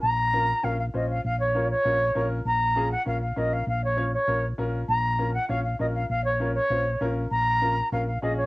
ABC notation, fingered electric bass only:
X:1
M:4/4
L:1/8
Q:1/4=198
K:Bbm
V:1 name="Fingered electric bass" clef=bass
B,,,4 B,,,2 B,,,2 | B,,,4 B,,,2 B,,,2 | B,,,4 B,,,2 B,,,2 | B,,,4 B,,,2 B,,,2 |
B,,,4 B,,,2 B,,,2 | B,,,4 B,,,2 B,,,2 | B,,,4 B,,,2 B,,,2 |]